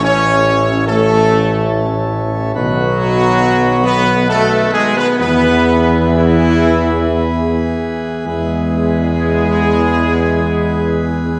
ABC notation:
X:1
M:3/4
L:1/16
Q:1/4=64
K:E
V:1 name="Trumpet section"
c4 A6 z2 | F6 B2 A2 G B | B4 E6 z2 | G12 |]
V:2 name="Pipe organ"
[CA]12 | [B,B]12- | [B,B]12 | [B,B]12 |]
V:3 name="Pipe organ" clef=bass
E,12 | [D,F]12 | [E,G]12 | [E,G]12 |]
V:4 name="French horn section"
C4 A,6 z2 | F,6 B,2 A,2 G, B, | B,4 E,6 z2 | G,12 |]
V:5 name="Trombone section"
C4 A,6 z2 | F,6 B,2 A,2 G, B, | B,4 E,6 z2 | G,12 |]
V:6 name="Tuba" clef=bass
A,,,12 | B,,,8- B,,,2 z2 | E,,8- E,,2 z2 | E,,12 |]